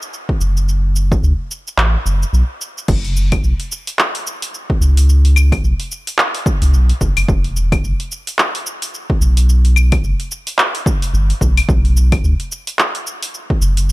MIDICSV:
0, 0, Header, 1, 3, 480
1, 0, Start_track
1, 0, Tempo, 550459
1, 591, Time_signature, 4, 2, 24, 8
1, 12140, End_track
2, 0, Start_track
2, 0, Title_t, "Analog synth bass"
2, 0, Program_c, 0, 38
2, 352, Note_on_c, 0, 30, 79
2, 1009, Note_off_c, 0, 30, 0
2, 1070, Note_on_c, 0, 38, 85
2, 1156, Note_off_c, 0, 38, 0
2, 1550, Note_on_c, 0, 33, 94
2, 1712, Note_off_c, 0, 33, 0
2, 1794, Note_on_c, 0, 30, 91
2, 1954, Note_off_c, 0, 30, 0
2, 2032, Note_on_c, 0, 35, 95
2, 2117, Note_off_c, 0, 35, 0
2, 2515, Note_on_c, 0, 30, 101
2, 2930, Note_off_c, 0, 30, 0
2, 2994, Note_on_c, 0, 35, 83
2, 3078, Note_off_c, 0, 35, 0
2, 4192, Note_on_c, 0, 37, 83
2, 4849, Note_off_c, 0, 37, 0
2, 4912, Note_on_c, 0, 35, 83
2, 4997, Note_off_c, 0, 35, 0
2, 5773, Note_on_c, 0, 37, 100
2, 5873, Note_on_c, 0, 35, 94
2, 5886, Note_off_c, 0, 37, 0
2, 6034, Note_off_c, 0, 35, 0
2, 6113, Note_on_c, 0, 30, 80
2, 6197, Note_off_c, 0, 30, 0
2, 6252, Note_on_c, 0, 30, 81
2, 6312, Note_off_c, 0, 30, 0
2, 6354, Note_on_c, 0, 28, 100
2, 6770, Note_off_c, 0, 28, 0
2, 6829, Note_on_c, 0, 31, 83
2, 6915, Note_off_c, 0, 31, 0
2, 8029, Note_on_c, 0, 35, 79
2, 8687, Note_off_c, 0, 35, 0
2, 8748, Note_on_c, 0, 31, 88
2, 8835, Note_off_c, 0, 31, 0
2, 9711, Note_on_c, 0, 31, 92
2, 9873, Note_off_c, 0, 31, 0
2, 9951, Note_on_c, 0, 35, 96
2, 10113, Note_off_c, 0, 35, 0
2, 10193, Note_on_c, 0, 35, 103
2, 10609, Note_off_c, 0, 35, 0
2, 10670, Note_on_c, 0, 38, 85
2, 10756, Note_off_c, 0, 38, 0
2, 11868, Note_on_c, 0, 30, 78
2, 12140, Note_off_c, 0, 30, 0
2, 12140, End_track
3, 0, Start_track
3, 0, Title_t, "Drums"
3, 19, Note_on_c, 9, 82, 42
3, 106, Note_off_c, 9, 82, 0
3, 118, Note_on_c, 9, 82, 29
3, 205, Note_off_c, 9, 82, 0
3, 253, Note_on_c, 9, 36, 56
3, 340, Note_off_c, 9, 36, 0
3, 357, Note_on_c, 9, 82, 71
3, 444, Note_off_c, 9, 82, 0
3, 498, Note_on_c, 9, 82, 42
3, 585, Note_off_c, 9, 82, 0
3, 598, Note_on_c, 9, 82, 31
3, 685, Note_off_c, 9, 82, 0
3, 836, Note_on_c, 9, 82, 68
3, 923, Note_off_c, 9, 82, 0
3, 974, Note_on_c, 9, 36, 94
3, 978, Note_on_c, 9, 82, 38
3, 1061, Note_off_c, 9, 36, 0
3, 1065, Note_off_c, 9, 82, 0
3, 1078, Note_on_c, 9, 82, 30
3, 1166, Note_off_c, 9, 82, 0
3, 1319, Note_on_c, 9, 82, 69
3, 1406, Note_off_c, 9, 82, 0
3, 1461, Note_on_c, 9, 82, 40
3, 1548, Note_off_c, 9, 82, 0
3, 1554, Note_on_c, 9, 39, 77
3, 1560, Note_on_c, 9, 82, 30
3, 1641, Note_off_c, 9, 39, 0
3, 1647, Note_off_c, 9, 82, 0
3, 1799, Note_on_c, 9, 82, 72
3, 1887, Note_off_c, 9, 82, 0
3, 1941, Note_on_c, 9, 82, 45
3, 2029, Note_off_c, 9, 82, 0
3, 2041, Note_on_c, 9, 82, 32
3, 2128, Note_off_c, 9, 82, 0
3, 2280, Note_on_c, 9, 82, 71
3, 2367, Note_off_c, 9, 82, 0
3, 2423, Note_on_c, 9, 82, 38
3, 2510, Note_off_c, 9, 82, 0
3, 2514, Note_on_c, 9, 49, 102
3, 2515, Note_on_c, 9, 36, 116
3, 2520, Note_on_c, 9, 82, 36
3, 2601, Note_off_c, 9, 49, 0
3, 2603, Note_off_c, 9, 36, 0
3, 2608, Note_off_c, 9, 82, 0
3, 2656, Note_on_c, 9, 46, 31
3, 2743, Note_off_c, 9, 46, 0
3, 2761, Note_on_c, 9, 82, 75
3, 2848, Note_off_c, 9, 82, 0
3, 2895, Note_on_c, 9, 46, 51
3, 2895, Note_on_c, 9, 75, 53
3, 2897, Note_on_c, 9, 36, 104
3, 2901, Note_on_c, 9, 82, 40
3, 2982, Note_off_c, 9, 46, 0
3, 2982, Note_off_c, 9, 75, 0
3, 2984, Note_off_c, 9, 36, 0
3, 2989, Note_off_c, 9, 82, 0
3, 2999, Note_on_c, 9, 82, 35
3, 3087, Note_off_c, 9, 82, 0
3, 3136, Note_on_c, 9, 46, 42
3, 3223, Note_off_c, 9, 46, 0
3, 3243, Note_on_c, 9, 82, 79
3, 3330, Note_off_c, 9, 82, 0
3, 3378, Note_on_c, 9, 46, 53
3, 3384, Note_on_c, 9, 82, 42
3, 3465, Note_off_c, 9, 46, 0
3, 3471, Note_off_c, 9, 82, 0
3, 3478, Note_on_c, 9, 39, 81
3, 3484, Note_on_c, 9, 82, 34
3, 3565, Note_off_c, 9, 39, 0
3, 3572, Note_off_c, 9, 82, 0
3, 3618, Note_on_c, 9, 46, 47
3, 3705, Note_off_c, 9, 46, 0
3, 3723, Note_on_c, 9, 82, 78
3, 3810, Note_off_c, 9, 82, 0
3, 3857, Note_on_c, 9, 46, 57
3, 3863, Note_on_c, 9, 82, 45
3, 3944, Note_off_c, 9, 46, 0
3, 3951, Note_off_c, 9, 82, 0
3, 3963, Note_on_c, 9, 82, 35
3, 4050, Note_off_c, 9, 82, 0
3, 4097, Note_on_c, 9, 36, 63
3, 4184, Note_off_c, 9, 36, 0
3, 4202, Note_on_c, 9, 82, 77
3, 4289, Note_off_c, 9, 82, 0
3, 4337, Note_on_c, 9, 46, 58
3, 4343, Note_on_c, 9, 82, 46
3, 4424, Note_off_c, 9, 46, 0
3, 4430, Note_off_c, 9, 82, 0
3, 4442, Note_on_c, 9, 82, 34
3, 4529, Note_off_c, 9, 82, 0
3, 4577, Note_on_c, 9, 46, 31
3, 4664, Note_off_c, 9, 46, 0
3, 4675, Note_on_c, 9, 75, 56
3, 4682, Note_on_c, 9, 82, 77
3, 4763, Note_off_c, 9, 75, 0
3, 4769, Note_off_c, 9, 82, 0
3, 4815, Note_on_c, 9, 36, 102
3, 4816, Note_on_c, 9, 46, 51
3, 4816, Note_on_c, 9, 75, 55
3, 4823, Note_on_c, 9, 82, 41
3, 4903, Note_off_c, 9, 36, 0
3, 4904, Note_off_c, 9, 46, 0
3, 4904, Note_off_c, 9, 75, 0
3, 4910, Note_off_c, 9, 82, 0
3, 4921, Note_on_c, 9, 82, 34
3, 5008, Note_off_c, 9, 82, 0
3, 5054, Note_on_c, 9, 46, 43
3, 5141, Note_off_c, 9, 46, 0
3, 5158, Note_on_c, 9, 82, 79
3, 5246, Note_off_c, 9, 82, 0
3, 5295, Note_on_c, 9, 46, 55
3, 5302, Note_on_c, 9, 82, 44
3, 5382, Note_off_c, 9, 46, 0
3, 5389, Note_off_c, 9, 82, 0
3, 5392, Note_on_c, 9, 39, 79
3, 5398, Note_on_c, 9, 82, 35
3, 5479, Note_off_c, 9, 39, 0
3, 5486, Note_off_c, 9, 82, 0
3, 5533, Note_on_c, 9, 46, 46
3, 5621, Note_off_c, 9, 46, 0
3, 5634, Note_on_c, 9, 36, 112
3, 5638, Note_on_c, 9, 82, 80
3, 5721, Note_off_c, 9, 36, 0
3, 5725, Note_off_c, 9, 82, 0
3, 5771, Note_on_c, 9, 46, 56
3, 5778, Note_on_c, 9, 82, 49
3, 5859, Note_off_c, 9, 46, 0
3, 5865, Note_off_c, 9, 82, 0
3, 5875, Note_on_c, 9, 82, 34
3, 5962, Note_off_c, 9, 82, 0
3, 6012, Note_on_c, 9, 46, 31
3, 6099, Note_off_c, 9, 46, 0
3, 6113, Note_on_c, 9, 36, 58
3, 6116, Note_on_c, 9, 82, 76
3, 6200, Note_off_c, 9, 36, 0
3, 6203, Note_off_c, 9, 82, 0
3, 6250, Note_on_c, 9, 46, 54
3, 6250, Note_on_c, 9, 75, 73
3, 6257, Note_on_c, 9, 82, 43
3, 6338, Note_off_c, 9, 46, 0
3, 6338, Note_off_c, 9, 75, 0
3, 6344, Note_off_c, 9, 82, 0
3, 6353, Note_on_c, 9, 36, 124
3, 6356, Note_on_c, 9, 82, 37
3, 6440, Note_off_c, 9, 36, 0
3, 6443, Note_off_c, 9, 82, 0
3, 6491, Note_on_c, 9, 46, 32
3, 6578, Note_off_c, 9, 46, 0
3, 6597, Note_on_c, 9, 82, 78
3, 6684, Note_off_c, 9, 82, 0
3, 6733, Note_on_c, 9, 36, 105
3, 6734, Note_on_c, 9, 46, 49
3, 6734, Note_on_c, 9, 75, 53
3, 6740, Note_on_c, 9, 82, 44
3, 6820, Note_off_c, 9, 36, 0
3, 6821, Note_off_c, 9, 46, 0
3, 6821, Note_off_c, 9, 75, 0
3, 6827, Note_off_c, 9, 82, 0
3, 6840, Note_on_c, 9, 82, 34
3, 6927, Note_off_c, 9, 82, 0
3, 6974, Note_on_c, 9, 46, 41
3, 7062, Note_off_c, 9, 46, 0
3, 7077, Note_on_c, 9, 82, 78
3, 7165, Note_off_c, 9, 82, 0
3, 7213, Note_on_c, 9, 46, 56
3, 7220, Note_on_c, 9, 82, 46
3, 7300, Note_off_c, 9, 46, 0
3, 7307, Note_off_c, 9, 82, 0
3, 7312, Note_on_c, 9, 39, 77
3, 7318, Note_on_c, 9, 82, 35
3, 7399, Note_off_c, 9, 39, 0
3, 7406, Note_off_c, 9, 82, 0
3, 7455, Note_on_c, 9, 46, 43
3, 7542, Note_off_c, 9, 46, 0
3, 7557, Note_on_c, 9, 82, 86
3, 7644, Note_off_c, 9, 82, 0
3, 7692, Note_on_c, 9, 46, 55
3, 7698, Note_on_c, 9, 82, 50
3, 7779, Note_off_c, 9, 46, 0
3, 7786, Note_off_c, 9, 82, 0
3, 7799, Note_on_c, 9, 82, 36
3, 7886, Note_off_c, 9, 82, 0
3, 7933, Note_on_c, 9, 36, 68
3, 8020, Note_off_c, 9, 36, 0
3, 8037, Note_on_c, 9, 82, 74
3, 8124, Note_off_c, 9, 82, 0
3, 8171, Note_on_c, 9, 46, 57
3, 8178, Note_on_c, 9, 82, 49
3, 8259, Note_off_c, 9, 46, 0
3, 8265, Note_off_c, 9, 82, 0
3, 8278, Note_on_c, 9, 82, 36
3, 8365, Note_off_c, 9, 82, 0
3, 8412, Note_on_c, 9, 46, 29
3, 8500, Note_off_c, 9, 46, 0
3, 8512, Note_on_c, 9, 75, 53
3, 8519, Note_on_c, 9, 82, 74
3, 8599, Note_off_c, 9, 75, 0
3, 8606, Note_off_c, 9, 82, 0
3, 8651, Note_on_c, 9, 46, 50
3, 8651, Note_on_c, 9, 75, 58
3, 8653, Note_on_c, 9, 36, 113
3, 8657, Note_on_c, 9, 82, 41
3, 8738, Note_off_c, 9, 46, 0
3, 8738, Note_off_c, 9, 75, 0
3, 8740, Note_off_c, 9, 36, 0
3, 8745, Note_off_c, 9, 82, 0
3, 8755, Note_on_c, 9, 82, 35
3, 8842, Note_off_c, 9, 82, 0
3, 8891, Note_on_c, 9, 46, 38
3, 8979, Note_off_c, 9, 46, 0
3, 8995, Note_on_c, 9, 82, 78
3, 9082, Note_off_c, 9, 82, 0
3, 9129, Note_on_c, 9, 46, 51
3, 9135, Note_on_c, 9, 82, 46
3, 9216, Note_off_c, 9, 46, 0
3, 9223, Note_off_c, 9, 82, 0
3, 9229, Note_on_c, 9, 39, 79
3, 9236, Note_on_c, 9, 82, 34
3, 9317, Note_off_c, 9, 39, 0
3, 9323, Note_off_c, 9, 82, 0
3, 9371, Note_on_c, 9, 46, 43
3, 9459, Note_off_c, 9, 46, 0
3, 9471, Note_on_c, 9, 36, 100
3, 9478, Note_on_c, 9, 82, 79
3, 9558, Note_off_c, 9, 36, 0
3, 9565, Note_off_c, 9, 82, 0
3, 9613, Note_on_c, 9, 46, 51
3, 9619, Note_on_c, 9, 82, 47
3, 9700, Note_off_c, 9, 46, 0
3, 9706, Note_off_c, 9, 82, 0
3, 9717, Note_on_c, 9, 82, 35
3, 9805, Note_off_c, 9, 82, 0
3, 9853, Note_on_c, 9, 46, 30
3, 9940, Note_off_c, 9, 46, 0
3, 9951, Note_on_c, 9, 36, 61
3, 9957, Note_on_c, 9, 82, 82
3, 10038, Note_off_c, 9, 36, 0
3, 10045, Note_off_c, 9, 82, 0
3, 10093, Note_on_c, 9, 46, 51
3, 10093, Note_on_c, 9, 75, 73
3, 10099, Note_on_c, 9, 82, 45
3, 10180, Note_off_c, 9, 46, 0
3, 10180, Note_off_c, 9, 75, 0
3, 10187, Note_off_c, 9, 82, 0
3, 10191, Note_on_c, 9, 36, 121
3, 10198, Note_on_c, 9, 82, 35
3, 10278, Note_off_c, 9, 36, 0
3, 10285, Note_off_c, 9, 82, 0
3, 10332, Note_on_c, 9, 46, 31
3, 10419, Note_off_c, 9, 46, 0
3, 10436, Note_on_c, 9, 82, 75
3, 10524, Note_off_c, 9, 82, 0
3, 10570, Note_on_c, 9, 46, 47
3, 10570, Note_on_c, 9, 75, 53
3, 10572, Note_on_c, 9, 36, 107
3, 10577, Note_on_c, 9, 82, 42
3, 10658, Note_off_c, 9, 46, 0
3, 10658, Note_off_c, 9, 75, 0
3, 10659, Note_off_c, 9, 36, 0
3, 10664, Note_off_c, 9, 82, 0
3, 10676, Note_on_c, 9, 82, 35
3, 10763, Note_off_c, 9, 82, 0
3, 10811, Note_on_c, 9, 46, 39
3, 10898, Note_off_c, 9, 46, 0
3, 10916, Note_on_c, 9, 82, 78
3, 11003, Note_off_c, 9, 82, 0
3, 11051, Note_on_c, 9, 46, 55
3, 11057, Note_on_c, 9, 82, 44
3, 11138, Note_off_c, 9, 46, 0
3, 11144, Note_off_c, 9, 82, 0
3, 11151, Note_on_c, 9, 39, 75
3, 11157, Note_on_c, 9, 82, 34
3, 11238, Note_off_c, 9, 39, 0
3, 11245, Note_off_c, 9, 82, 0
3, 11291, Note_on_c, 9, 46, 40
3, 11379, Note_off_c, 9, 46, 0
3, 11396, Note_on_c, 9, 82, 80
3, 11484, Note_off_c, 9, 82, 0
3, 11532, Note_on_c, 9, 46, 55
3, 11539, Note_on_c, 9, 82, 47
3, 11619, Note_off_c, 9, 46, 0
3, 11626, Note_off_c, 9, 82, 0
3, 11636, Note_on_c, 9, 82, 34
3, 11723, Note_off_c, 9, 82, 0
3, 11773, Note_on_c, 9, 36, 64
3, 11860, Note_off_c, 9, 36, 0
3, 11876, Note_on_c, 9, 82, 78
3, 11963, Note_off_c, 9, 82, 0
3, 12009, Note_on_c, 9, 46, 51
3, 12015, Note_on_c, 9, 82, 44
3, 12096, Note_off_c, 9, 46, 0
3, 12102, Note_off_c, 9, 82, 0
3, 12140, End_track
0, 0, End_of_file